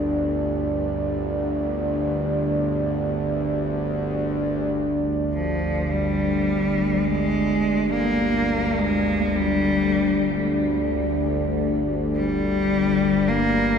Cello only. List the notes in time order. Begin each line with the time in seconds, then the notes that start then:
5.34 F3
5.90 G3
7.05 G#3
7.92 A#3
8.78 G#3
9.36 G3
12.16 G3
13.28 A#3